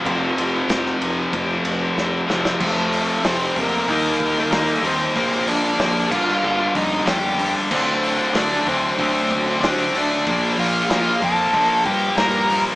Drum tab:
CC |----------------|x---------------|------x---------|x---------------|
RD |x-x-x-x-x-x-----|----------------|----------------|----------------|
HH |----------------|--o-o-o-o-o-o-o-|o-o-o-----o-o-o-|--o-o-o-o-o-o-o-|
SD |----oo------o-oo|-o--o-------o---|-o--o-------o---|----o-------o---|
BD |o-------o-------|o-----o-o-o-----|o-----o---o-----|o-----o-o-o-----|

CC |----------------|
RD |----------------|
HH |o-o-o-o-o-o-o-o-|
SD |----o-------o---|
BD |o-----o-o-o-----|